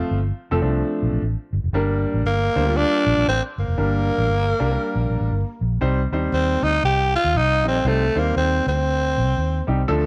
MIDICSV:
0, 0, Header, 1, 4, 480
1, 0, Start_track
1, 0, Tempo, 509338
1, 1641, Time_signature, 4, 2, 24, 8
1, 9483, End_track
2, 0, Start_track
2, 0, Title_t, "Grand piano"
2, 0, Program_c, 0, 0
2, 0, Note_on_c, 0, 53, 86
2, 0, Note_on_c, 0, 57, 80
2, 0, Note_on_c, 0, 60, 86
2, 0, Note_on_c, 0, 65, 100
2, 156, Note_off_c, 0, 60, 0
2, 157, Note_off_c, 0, 53, 0
2, 157, Note_off_c, 0, 57, 0
2, 159, Note_off_c, 0, 65, 0
2, 482, Note_on_c, 0, 53, 89
2, 487, Note_on_c, 0, 57, 78
2, 488, Note_on_c, 0, 60, 82
2, 488, Note_on_c, 0, 69, 95
2, 540, Note_off_c, 0, 53, 0
2, 543, Note_off_c, 0, 57, 0
2, 543, Note_off_c, 0, 60, 0
2, 543, Note_off_c, 0, 69, 0
2, 580, Note_on_c, 0, 53, 75
2, 583, Note_on_c, 0, 62, 80
2, 584, Note_on_c, 0, 60, 72
2, 586, Note_on_c, 0, 57, 72
2, 1133, Note_off_c, 0, 53, 0
2, 1135, Note_off_c, 0, 60, 0
2, 1135, Note_off_c, 0, 62, 0
2, 1136, Note_off_c, 0, 57, 0
2, 1641, Note_on_c, 0, 55, 91
2, 1642, Note_on_c, 0, 58, 78
2, 1645, Note_on_c, 0, 62, 85
2, 1649, Note_on_c, 0, 70, 93
2, 2078, Note_off_c, 0, 55, 0
2, 2078, Note_off_c, 0, 58, 0
2, 2080, Note_off_c, 0, 62, 0
2, 2082, Note_off_c, 0, 70, 0
2, 2410, Note_on_c, 0, 62, 69
2, 2412, Note_on_c, 0, 55, 70
2, 2412, Note_on_c, 0, 58, 68
2, 2414, Note_on_c, 0, 72, 83
2, 2466, Note_off_c, 0, 62, 0
2, 2467, Note_off_c, 0, 55, 0
2, 2467, Note_off_c, 0, 58, 0
2, 2468, Note_off_c, 0, 72, 0
2, 2501, Note_on_c, 0, 58, 59
2, 2503, Note_on_c, 0, 55, 75
2, 2504, Note_on_c, 0, 62, 63
2, 2508, Note_on_c, 0, 65, 70
2, 3055, Note_off_c, 0, 58, 0
2, 3056, Note_off_c, 0, 55, 0
2, 3057, Note_off_c, 0, 62, 0
2, 3059, Note_off_c, 0, 65, 0
2, 3557, Note_on_c, 0, 62, 69
2, 3559, Note_on_c, 0, 55, 72
2, 3560, Note_on_c, 0, 58, 67
2, 3562, Note_on_c, 0, 70, 83
2, 3997, Note_off_c, 0, 62, 0
2, 3998, Note_off_c, 0, 55, 0
2, 3998, Note_off_c, 0, 58, 0
2, 3999, Note_off_c, 0, 70, 0
2, 4328, Note_on_c, 0, 55, 85
2, 4332, Note_on_c, 0, 58, 87
2, 4332, Note_on_c, 0, 62, 77
2, 4334, Note_on_c, 0, 70, 95
2, 4386, Note_off_c, 0, 55, 0
2, 4388, Note_off_c, 0, 58, 0
2, 4388, Note_off_c, 0, 62, 0
2, 4389, Note_off_c, 0, 70, 0
2, 4428, Note_on_c, 0, 58, 70
2, 4430, Note_on_c, 0, 55, 71
2, 4438, Note_on_c, 0, 70, 95
2, 4978, Note_off_c, 0, 58, 0
2, 4980, Note_off_c, 0, 55, 0
2, 4984, Note_off_c, 0, 70, 0
2, 5474, Note_on_c, 0, 55, 89
2, 5475, Note_on_c, 0, 63, 72
2, 5477, Note_on_c, 0, 60, 73
2, 5479, Note_on_c, 0, 72, 98
2, 5647, Note_off_c, 0, 55, 0
2, 5648, Note_off_c, 0, 63, 0
2, 5649, Note_off_c, 0, 60, 0
2, 5650, Note_off_c, 0, 72, 0
2, 5772, Note_on_c, 0, 55, 79
2, 5776, Note_on_c, 0, 63, 70
2, 5777, Note_on_c, 0, 60, 74
2, 5777, Note_on_c, 0, 72, 86
2, 6321, Note_off_c, 0, 55, 0
2, 6323, Note_off_c, 0, 60, 0
2, 6323, Note_off_c, 0, 63, 0
2, 6324, Note_off_c, 0, 72, 0
2, 7203, Note_on_c, 0, 60, 61
2, 7204, Note_on_c, 0, 55, 64
2, 7205, Note_on_c, 0, 63, 56
2, 7209, Note_on_c, 0, 75, 69
2, 7319, Note_off_c, 0, 60, 0
2, 7320, Note_off_c, 0, 55, 0
2, 7320, Note_off_c, 0, 63, 0
2, 7323, Note_off_c, 0, 75, 0
2, 7397, Note_on_c, 0, 55, 72
2, 7399, Note_on_c, 0, 63, 65
2, 7400, Note_on_c, 0, 72, 78
2, 7402, Note_on_c, 0, 60, 68
2, 7567, Note_off_c, 0, 55, 0
2, 7568, Note_off_c, 0, 63, 0
2, 7568, Note_off_c, 0, 72, 0
2, 7569, Note_off_c, 0, 60, 0
2, 7683, Note_on_c, 0, 60, 60
2, 7685, Note_on_c, 0, 55, 65
2, 7685, Note_on_c, 0, 63, 60
2, 7689, Note_on_c, 0, 72, 79
2, 8233, Note_off_c, 0, 60, 0
2, 8234, Note_off_c, 0, 55, 0
2, 8235, Note_off_c, 0, 63, 0
2, 8236, Note_off_c, 0, 72, 0
2, 9114, Note_on_c, 0, 55, 72
2, 9118, Note_on_c, 0, 60, 63
2, 9121, Note_on_c, 0, 67, 82
2, 9122, Note_on_c, 0, 63, 68
2, 9232, Note_off_c, 0, 55, 0
2, 9234, Note_off_c, 0, 60, 0
2, 9235, Note_off_c, 0, 63, 0
2, 9235, Note_off_c, 0, 67, 0
2, 9311, Note_on_c, 0, 53, 91
2, 9313, Note_on_c, 0, 69, 98
2, 9316, Note_on_c, 0, 57, 80
2, 9316, Note_on_c, 0, 62, 83
2, 9480, Note_off_c, 0, 53, 0
2, 9481, Note_off_c, 0, 69, 0
2, 9483, Note_off_c, 0, 57, 0
2, 9483, Note_off_c, 0, 62, 0
2, 9483, End_track
3, 0, Start_track
3, 0, Title_t, "Tenor saxophone"
3, 0, Program_c, 1, 66
3, 2134, Note_on_c, 1, 58, 93
3, 2608, Note_on_c, 1, 62, 110
3, 2622, Note_off_c, 1, 58, 0
3, 3086, Note_off_c, 1, 62, 0
3, 3095, Note_on_c, 1, 60, 104
3, 3221, Note_off_c, 1, 60, 0
3, 3389, Note_on_c, 1, 58, 88
3, 5261, Note_off_c, 1, 58, 0
3, 5971, Note_on_c, 1, 60, 88
3, 6251, Note_on_c, 1, 63, 94
3, 6265, Note_off_c, 1, 60, 0
3, 6444, Note_off_c, 1, 63, 0
3, 6456, Note_on_c, 1, 67, 99
3, 6714, Note_off_c, 1, 67, 0
3, 6744, Note_on_c, 1, 65, 102
3, 6948, Note_on_c, 1, 63, 106
3, 6962, Note_off_c, 1, 65, 0
3, 7219, Note_off_c, 1, 63, 0
3, 7237, Note_on_c, 1, 60, 88
3, 7426, Note_on_c, 1, 57, 90
3, 7440, Note_off_c, 1, 60, 0
3, 7714, Note_on_c, 1, 58, 78
3, 7728, Note_off_c, 1, 57, 0
3, 7886, Note_off_c, 1, 58, 0
3, 7892, Note_on_c, 1, 60, 89
3, 8150, Note_off_c, 1, 60, 0
3, 8184, Note_on_c, 1, 60, 90
3, 9092, Note_off_c, 1, 60, 0
3, 9483, End_track
4, 0, Start_track
4, 0, Title_t, "Fingered electric bass"
4, 0, Program_c, 2, 33
4, 104, Note_on_c, 2, 31, 94
4, 286, Note_off_c, 2, 31, 0
4, 486, Note_on_c, 2, 29, 94
4, 559, Note_off_c, 2, 29, 0
4, 585, Note_on_c, 2, 36, 82
4, 767, Note_off_c, 2, 36, 0
4, 966, Note_on_c, 2, 34, 84
4, 1040, Note_off_c, 2, 34, 0
4, 1059, Note_on_c, 2, 34, 83
4, 1135, Note_off_c, 2, 34, 0
4, 1149, Note_on_c, 2, 33, 82
4, 1262, Note_off_c, 2, 33, 0
4, 1439, Note_on_c, 2, 31, 98
4, 1516, Note_off_c, 2, 31, 0
4, 1544, Note_on_c, 2, 29, 74
4, 1618, Note_off_c, 2, 29, 0
4, 1628, Note_on_c, 2, 31, 109
4, 1925, Note_off_c, 2, 31, 0
4, 2014, Note_on_c, 2, 33, 94
4, 2092, Note_off_c, 2, 33, 0
4, 2114, Note_on_c, 2, 31, 85
4, 2335, Note_off_c, 2, 31, 0
4, 2412, Note_on_c, 2, 38, 88
4, 2668, Note_off_c, 2, 38, 0
4, 2887, Note_on_c, 2, 34, 96
4, 2962, Note_off_c, 2, 34, 0
4, 2988, Note_on_c, 2, 34, 83
4, 3061, Note_off_c, 2, 34, 0
4, 3088, Note_on_c, 2, 33, 93
4, 3195, Note_off_c, 2, 33, 0
4, 3374, Note_on_c, 2, 31, 86
4, 3446, Note_off_c, 2, 31, 0
4, 3467, Note_on_c, 2, 29, 74
4, 3541, Note_off_c, 2, 29, 0
4, 3564, Note_on_c, 2, 31, 110
4, 3856, Note_off_c, 2, 31, 0
4, 3940, Note_on_c, 2, 33, 89
4, 4017, Note_off_c, 2, 33, 0
4, 4041, Note_on_c, 2, 31, 83
4, 4260, Note_off_c, 2, 31, 0
4, 4338, Note_on_c, 2, 36, 82
4, 4483, Note_off_c, 2, 36, 0
4, 4669, Note_on_c, 2, 34, 93
4, 4777, Note_off_c, 2, 34, 0
4, 4804, Note_on_c, 2, 34, 78
4, 4880, Note_off_c, 2, 34, 0
4, 4905, Note_on_c, 2, 33, 82
4, 4980, Note_off_c, 2, 33, 0
4, 5004, Note_on_c, 2, 31, 82
4, 5113, Note_off_c, 2, 31, 0
4, 5288, Note_on_c, 2, 34, 88
4, 5437, Note_off_c, 2, 34, 0
4, 5483, Note_on_c, 2, 36, 100
4, 5701, Note_off_c, 2, 36, 0
4, 5766, Note_on_c, 2, 39, 75
4, 5915, Note_off_c, 2, 39, 0
4, 5959, Note_on_c, 2, 39, 85
4, 6178, Note_off_c, 2, 39, 0
4, 6243, Note_on_c, 2, 38, 83
4, 6393, Note_off_c, 2, 38, 0
4, 6440, Note_on_c, 2, 36, 85
4, 6733, Note_off_c, 2, 36, 0
4, 6826, Note_on_c, 2, 39, 73
4, 6922, Note_on_c, 2, 36, 86
4, 6936, Note_off_c, 2, 39, 0
4, 7203, Note_off_c, 2, 36, 0
4, 7203, Note_on_c, 2, 34, 81
4, 7352, Note_off_c, 2, 34, 0
4, 7395, Note_on_c, 2, 36, 105
4, 7614, Note_off_c, 2, 36, 0
4, 7686, Note_on_c, 2, 39, 79
4, 7834, Note_off_c, 2, 39, 0
4, 7880, Note_on_c, 2, 39, 88
4, 8096, Note_off_c, 2, 39, 0
4, 8165, Note_on_c, 2, 38, 83
4, 8648, Note_on_c, 2, 36, 86
4, 8663, Note_off_c, 2, 38, 0
4, 8794, Note_off_c, 2, 36, 0
4, 8832, Note_on_c, 2, 39, 89
4, 9050, Note_off_c, 2, 39, 0
4, 9121, Note_on_c, 2, 36, 86
4, 9269, Note_off_c, 2, 36, 0
4, 9319, Note_on_c, 2, 38, 108
4, 9483, Note_off_c, 2, 38, 0
4, 9483, End_track
0, 0, End_of_file